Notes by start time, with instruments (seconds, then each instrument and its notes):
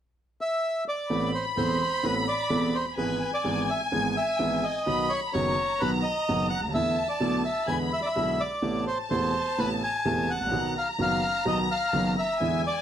0.41 bandoneon E5
0.88 bandoneon D5
1.10 grand piano A1 A2 E3 B3 C4 A4, violin section B5
1.34 bandoneon C5
1.57 grand piano E1 E2 E3 B3 C4 A4, bandoneon C5
2.03 grand piano A1 A2 E3 B3 C4 A4, bandoneon B4
2.28 bandoneon D5
2.50 grand piano E1 E2 E3 B3 C4 A4
2.75 bandoneon C5
2.97 grand piano G#1 G#2 E3 G#3 B3 G#4, bandoneon B4, violin section G#5
3.34 bandoneon D5
3.44 grand piano G#1 G#2 E3 G#3 B3 G#4
3.70 bandoneon E5
3.92 grand piano G#1 G#2 E3 G#3 B3 G#4, bandoneon G#5
4.17 bandoneon E5
4.39 grand piano G#1 G#2 E3 G#3 B3 G#4
4.64 bandoneon D#5
4.86 grand piano B1 B2 D#3 F#3 B3 F#4, violin section B5
5.09 bandoneon C#5
5.33 grand piano F#1 F#2 D#3 F#3 B3 F#4, bandoneon C#5, violin section A#5
5.80 grand piano B1 B2 D#3 F#3 B3 F#4, bandoneon B4
6.03 bandoneon D#5
6.29 grand piano F#1 F#2 D#3 F#3 B3 F#4
6.50 bandoneon F#5
6.58 grand piano C#2 D2
6.68 grand piano D#2
6.74 grand piano E2 D3 E3 A3 B3 E4, bandoneon E5, violin section A5
7.09 bandoneon D5
7.20 grand piano B1 B2 D3 A3 B3 E4
7.45 bandoneon E5
7.67 grand piano E2 D3 E3 G#3 B3 E4, bandoneon G#5, violin section B5
7.93 bandoneon E5
8.02 bandoneon D5
8.06 bandoneon E5
8.15 grand piano B1 B2 D3 G#3 B3 E4
8.40 bandoneon D5
8.62 grand piano A1 A2 C3 A3 B3 E4, violin section A5
8.87 bandoneon C5
9.10 grand piano E1 E2 C3 A3 B3 E4, bandoneon C5
9.59 grand piano A1 A2 C3 A3 B3 E4, bandoneon B4
9.84 bandoneon G#5
10.05 grand piano E1 E2 C3 A3 B3 E4
10.30 bandoneon F#5
10.35 grand piano G#1
10.41 grand piano A1
10.46 grand piano A#1
10.51 grand piano B1 B2 D#3 F#3 B3 F#4, violin section A#5
10.78 bandoneon F5
10.98 grand piano F#1 F#2 D#3 F#3 B3 F#4, bandoneon F5
11.45 grand piano B1 B2 D#3 F#3 B3 F#4, bandoneon D#5
11.71 bandoneon F5
11.93 grand piano F#1 F#2 D#3 F#3 B3 F#4
12.19 bandoneon E5
12.40 grand piano E2 D3 E3 G#3 B3 E4, violin section G#5
12.67 bandoneon D5